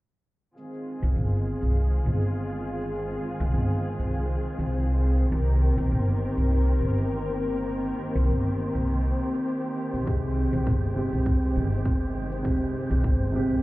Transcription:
0.57 D#3 G#3 C4 F4 G#4 C5, cabasa
0.73 cabasa
1.03 C2, cabasa
1.16 G1, cabasa
1.33 cabasa
1.62 C2, cabasa
1.76 cabasa
1.92 cabasa
2.06 G1
2.22 cabasa
2.35 cabasa
2.52 cabasa
2.81 cabasa
2.95 cabasa
3.11 cabasa
3.40 C2, cabasa
3.54 G1, cabasa
3.70 cabasa
3.99 C2, cabasa
4.13 cabasa
4.29 cabasa
4.59 C2, cabasa
4.73 cabasa
4.89 cabasa
5.18 cabasa
5.32 C2 A#3 G4 A#4, cabasa
5.48 cabasa
5.78 C2, cabasa
5.91 G1, cabasa
6.08 cabasa
6.37 C2, cabasa
6.51 cabasa
6.67 cabasa
6.80 G1
6.97 cabasa
7.11 cabasa
7.27 cabasa
7.56 cabasa
7.70 cabasa
7.86 cabasa
8.15 C2, cabasa
8.29 G1, cabasa
8.45 cabasa
8.75 C2, cabasa
8.89 cabasa
9.05 cabasa
9.34 cabasa
9.48 cabasa
9.64 cabasa
9.94 C2, cabasa
10.05 C3 G#3, kick, cabasa
10.09 G4
10.24 cabasa
10.53 C2, cabasa
10.67 G1, kick, cabasa
10.83 cabasa
10.94 C3 G#3 G4
11.12 C2, cabasa
11.26 kick, cabasa
11.42 cabasa
11.56 G1
11.72 cabasa
11.85 kick, cabasa
12.02 cabasa
12.32 cabasa
12.43 C3 G#3, kick, cabasa
12.47 G4
12.61 cabasa
12.91 C2, cabasa
13.04 G1, kick, cabasa
13.20 cabasa
13.32 C3 G#3 G4
13.50 C2, cabasa

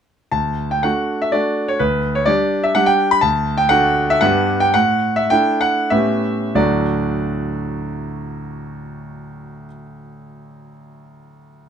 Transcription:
0.32 D2 A5
0.71 G5
0.83 A3 D4 F#4 F#5
1.22 E5
1.32 A3 D4 F#4 D5
1.68 C#5
1.79 D2 B4
2.15 C#5
2.25 G3 D4 G4 D5
2.64 E5
2.75 G3 D4 G4 F#5
2.86 G5
3.11 B5
3.21 D2 A5
3.58 G5
3.69 A3 D4 F#4 F#5
4.10 E5
4.21 G2 B3 D4 G4 F#5
4.60 G5
4.74 A2 F#5
5.16 E5
5.30 A3 D4 E4 G5
5.61 F#5
5.90 A2 B3 C#4 G4 E5
6.55 D2 A2 F#3 A3 D4 F#4 D5

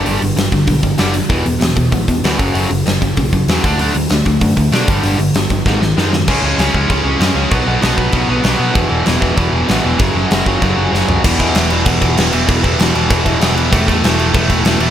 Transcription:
0.05 G1 G2 D3 G3, open hi-hat
0.21 G1 G2 D3, open hi-hat
0.36 G1 G2 D3, snare, open hi-hat
0.52 G1 G2 D3, kick, open hi-hat
0.67 B1 G2 D3, kick, open hi-hat
0.83 G1 G2 D3, kick, open hi-hat
0.98 F#1 G2 D3 G3, snare, open hi-hat
1.14 G2 D3, open hi-hat
1.29 E1 E2 B2 E3, kick, open hi-hat
1.45 E1 E2 B2, open hi-hat
1.60 E1 E2 B2, snare, open hi-hat
1.76 E1 E2 B2, kick, open hi-hat
1.92 A1 E2 B2, kick, open hi-hat
2.08 E1 E2 B2, kick, open hi-hat
2.24 D2 E2 B2 E3, snare, open hi-hat
2.39 F#1 F#2 C#3 F#3, kick, open hi-hat
2.54 F#1 F#2 C#3 F#3, open hi-hat
2.70 F#1 F#2 C#3, open hi-hat
2.86 F#1 F#2 C#3, snare, open hi-hat
3.01 F#1 F#2 C#3, kick, open hi-hat
3.17 B1 F#2 C#3, kick, open hi-hat
3.33 F#1 F#2 C#3, kick, open hi-hat
3.47 E2 F#2 C#3 F#3, snare, open hi-hat
3.64 D2 D3 A3 D4, kick, open hi-hat
3.78 D2 D3 A3 D4, open hi-hat
3.95 D2 D3 A3, open hi-hat
4.09 D2 D3 A3, snare, open hi-hat
4.26 D2 D3 A3, kick, open hi-hat
4.41 F#2 D3 A3, kick, open hi-hat
4.57 D2 D3 A3, kick, open hi-hat
4.72 B2 D3 A3 D4, snare, open hi-hat
4.88 G1 G2 D3 G3, kick, open hi-hat
5.03 G1 G2 D3 G3, open hi-hat
5.18 G1 G2 D3, open hi-hat
5.34 G1 G2 D3, snare, open hi-hat
5.50 G1 G2 D3, kick, open hi-hat
5.66 G#1 G#2 D#3 G#3, kick, snare
5.81 G#1 G#2 D#3, snare
5.97 F#2 G#2 D#3 G#3, snare
6.13 G#2 D#3, snare
6.28 C#2 C#3 G#3 C#4, kick, crash
6.43 C#2 C#3 G#3 C#4
6.58 C#2 C#3 G#3 C#4, snare, crash
6.74 C#2 C#3 G#3 C#4, kick
6.89 C#2 C#3 G#3 C#4, kick, crash
7.04 C#2 C#3 G#3 C#4
7.19 F#2 C#3 G#3 C#4, snare, crash
7.35 C#2 C#3 G#3 C#4
7.50 B1 B2 F#3 B3, kick, crash
7.67 B1 B2 F#3 B3
7.82 B1 B2 F#3 B3, snare, crash
7.97 B1 B2 F#3 B3, kick
8.12 B1 B2 F#3 B3, kick, crash
8.29 B1 B2 F#3 B3
8.43 B1 B2 F#3 B3, snare, crash
8.59 B2 F#3 B3
8.74 E1 E2 B2 E3, kick, crash
8.90 E1 E2 B2 E3
9.06 E1 E2 B2 E3, snare, crash
9.21 E1 E2 B2 E3, kick
9.37 E1 E2 B2 E3, kick, crash
9.53 E1 E2 B2 E3
9.68 A1 E2 B2 E3, snare, crash
9.84 E1 E2 B2 E3
9.99 F#1 F#2 C#3 F#3, kick, crash
10.15 F#1 F#2 C#3 F#3
10.31 F#1 F#2 C#3 F#3, snare, crash
10.46 F#1 F#2 C#3 F#3, kick
10.62 F#1 F#2 C#3 F#3, kick, crash
10.77 F#1 F#2 C#3 F#3
10.92 F#1 F#2 C#3 F#3, snare
11.07 F#2 C#3 F#3, floor tom
11.24 E1 E2 B2 E3, kick, crash
11.39 E2 B2 E3, kick, crash
11.55 E1 E2 B2 E3, snare, crash
11.70 E2 B2 E3, crash
11.85 E1 E2 B2 E3, kick, crash
12.02 E1 E2 B2 E3, kick, crash
12.17 E1 E2 B2 E3, snare, crash
12.33 E1 E2 B2 E3, crash
12.47 E1 E2 B2 E3, kick, crash
12.64 E1 E2 B2 E3, kick, crash
12.79 E1 E2 B2 E3, snare, crash
12.94 E1 E2 B2 E3, crash
13.10 E1 E2 B2 E3, kick, crash
13.25 E1 E2 B2 E3, kick, crash
13.40 E1 E2 B2 E3, snare, crash
13.56 E1 E2 B2 E3, crash
13.72 E1 A2 E3 A3, kick, crash
13.88 E2 A2 E3 A3, kick, crash
14.02 E1 A2 E3 A3, snare, crash
14.19 A2 E3 A3, crash
14.34 E1 A2 E3 A3, kick, crash
14.50 E1 A2 E3 A3, kick, crash
14.63 E1 A2 E3 A3, snare, crash
14.79 E1 A2 E3 A3, crash

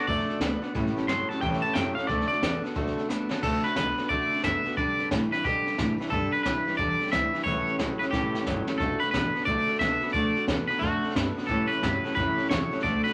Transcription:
0.07 F#2 D3 A3 D4 F#4 A4 D5, kick, snare
0.19 snare
0.28 D4 F#4 A4, muted upright bass stroke, snare
0.40 D2 D3 A3 B3 D4 F#4 A4, snare, hi-hat pedal
0.62 D3 B3 D4 F#4 A4, snare
0.75 A2 E3 G3 C#4 G4 A4, kick, snare
0.86 snare
0.96 G3 C#4 G4 A4, muted upright bass stroke, snare
1.07 G2 A2 F#3 G3 C#4 G4 C6, snare, hi-hat pedal
1.11 A4
1.29 A2 F#3 C#4 G4 A4 A5, muted upright bass stroke, snare
1.33 G3
1.41 E2 A2 E3 G3 C#4 G4 A4 G5, kick, snare
1.53 snare
1.62 C#4 G4 A4 A5, snare
1.66 G3
1.74 F#2 A2 F#3 G3 C#4 G4 A4 G5, snare, hi-hat pedal
1.95 A2 F#3 C#4 G4 A4 F5, muted upright bass stroke, snare
1.99 G3
2.07 D2 D3 A3 D4 F#4 A4 D5, kick, snare
2.21 snare
2.28 A4 D5, muted upright bass stroke
2.32 D4 F#4, snare
2.42 E2 D3 A3 B3 D4 F#4 A4, snare, hi-hat pedal
2.63 D3 B3 D4 F#4 A4, muted upright bass stroke, snare
2.75 D2 D3 A3 D4 F#4 A4, kick, snare
2.87 snare
2.97 D4 F#4 A4, muted upright bass stroke, snare
3.09 F#2 D3 A3 B3 D4 F#4 A4, snare, hi-hat pedal
3.30 D3 B3 D4 F#4 A4, muted upright bass stroke, snare
3.43 D2 D3 A3 D4 F#4 A4, kick, snare, crash
3.64 D4 F#4 A4 B4, snare
3.76 C#2 D3 A3 B3 D4 F#4 A4 B4, kick, snare, hi-hat pedal
3.98 D3 B3 D4 F#4 A4, muted upright bass stroke, snare
4.09 D2 D3 A3 D4 F#4 A4 D5, kick, snare
4.31 D4 F#4 A4, muted upright bass stroke, snare
4.38 snare
4.43 F#2 D3 A3 B3 D4 F#4 A4 E5, kick, snare, hi-hat pedal
4.65 D3 B3 D4 F#4 A4, snare
4.72 snare
4.77 G2 D3 G3 D4 G4 B4 D5, kick, snare
4.99 D4 G4 B4, muted upright bass stroke, snare
5.11 G2 A2 E3 G3 D4 G4 B4, kick, snare, hi-hat pedal
5.32 G2 E3 D4 G4 B4, muted upright bass stroke, snare
5.44 G2 B2 D3 G3 D4 G4 B4, kick, snare
5.65 D4 G4 B4, muted upright bass stroke, snare
5.72 snare
5.77 G2 A2 E3 G3 D4 G4 B4, kick, snare, hi-hat pedal
5.98 G2 E3 D4 G4 B4, muted upright bass stroke, snare
6.07 A4, snare
6.12 G2 D3 G3 D4 G4 B4, kick, snare
6.32 D4 G4 B4, snare
6.43 D2 G2 E3 G3 D4 G4 B4, kick, snare, hi-hat pedal
6.65 G2 E3 D4 G4 B4, snare
6.73 snare
6.77 E2 G2 D3 G3 D4 G4 B4 D5, kick, snare
7.00 D4 G4 B4, snare
7.06 snare
7.11 D2 G2 E3 G3 D4 G4 B4 E5, kick, snare, hi-hat pedal
7.33 G2 E3 D4 G4 B4, snare
7.40 C#5, snare
7.45 C#2 A2 E3 G3 C#4 G4 A4, kick, snare
7.67 G3 C#4 G4 A4, muted upright bass stroke, snare
7.79 B1 A2 F#3 G3 C#4 G4 A4, kick, snare, hi-hat pedal
7.99 A2 F#3 G3 C#4 G4 A4 B4, muted upright bass stroke, snare
8.11 A2 E3 G3 C#4 G4 A4, kick, snare
8.35 G3 C#4 G4 A4, snare
8.46 G1 A2 F#3 G3 C#4 G4 A4, kick, snare, hi-hat pedal
8.67 A2 F#3 C#4 G4 A4, muted upright bass stroke, snare
8.71 G3
8.78 F#1 D3 A3 D4 A4, kick, snare
8.82 F#4 A4
9.00 F#4 A4 B4, snare
9.11 A1 D3 A3 B3 D4 F#4 A4 B4, kick, snare, hi-hat pedal
9.34 D3 B3 D4 F#4 A4, snare
9.41 D3, snare
9.45 B1 D3 A3 D4 F#4 A4 D5, kick, snare
9.67 D4 F#4 A4, muted upright bass stroke, snare
9.75 snare
9.79 C#2 D3 A3 B3 D4 F#4 A4 E5, kick, snare, hi-hat pedal
10.00 D3 B3 D4 F#4 A4, snare
10.08 snare
10.13 D2 D3 A3 D4 F#4 A4 D5, kick, snare
10.35 D4 F#4 A4, muted upright bass stroke, snare
10.47 E2 D3 A3 B3 D4 F#4 A4, kick, snare, hi-hat pedal
10.68 D3 B3 D4 F#4 A4 B4, muted upright bass stroke, snare
10.76 F#4, snare
10.80 F#2 D3 A3 D4 F#4 A4, kick, snare
11.02 D4 F#4 A4, muted upright bass stroke, snare
11.10 snare
11.15 G2 D3 A3 B3 D4 F#4 A4, kick, snare, hi-hat pedal
11.21 E4
11.35 D3 B3 D4 F#4 A4, snare
11.43 A4, snare
11.48 A2 E3 G3 C#4 G4 A4, kick, snare
11.68 C#4 G4 A4 B4, muted upright bass stroke
11.72 G3, snare
11.81 G2 A2 F#3 G3 C#4 G4 A4, kick, snare, hi-hat pedal
12.03 A2 F#3 G3 C#4 G4 A4, muted upright bass stroke, snare
12.11 A2 E3 B4, snare
12.16 F#2 A2 E3 G3 C#4 G4 A4, kick, snare
12.36 G3 C#4 G4 A4, muted upright bass stroke, snare
12.45 snare
12.49 E2 A2 F#3 G3 G4 A4 C#5, kick, snare, hi-hat pedal
12.71 A2 F#3 G3 C#4 G4 A4, muted upright bass stroke, snare
12.79 D3 D5, snare
12.84 D2 D3 A3 D4 F#4 A4, kick, snare
13.04 D4 F#4 A4 B4, snare

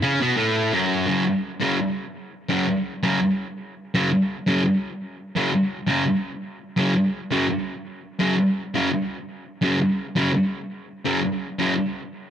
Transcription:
0.02 C#3 C#4
0.20 B2 B3
0.37 A2 A3
0.72 F#2 F#3
1.07 F#2 C#3 F#3
1.60 F#2 C#3 F#3
2.49 F#2 C#3 F#3
3.03 F#2 C#3 F#3
3.95 F#2 C#3 F#3
4.47 F#2 C#3 F#3
5.36 F#2 C#3 F#3
5.87 F#2 C#3 F#3
6.77 F#2 C#3 F#3
7.31 F#2 C#3 F#3
8.19 F#2 C#3 F#3
8.75 F#2 C#3 F#3
9.62 F#2 C#3 F#3
10.16 F#2 C#3 F#3
11.05 F#2 C#3 F#3
11.59 F#2 C#3 F#3

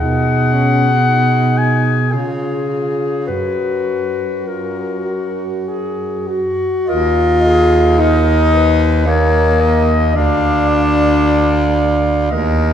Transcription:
0.00 B2 D#4 G#4 F#5
0.53 C#4
1.05 D#4
1.58 G#5
2.12 C#3 F4 G#4
2.71 F4
3.27 F#2 F#4 B4
4.46 F4 A#4
5.06 F#4
5.68 G#4
6.27 F#4
6.86 D#2 F4 A#4 D#5
7.42 G#4 D#5
7.98 D#4 A#4 D#5
8.55 B4
9.06 A#3 C#5 D#5
9.60 D#5
10.13 D2 D4 D5 F5
10.70 F5
12.30 D#2 A#4 D#5

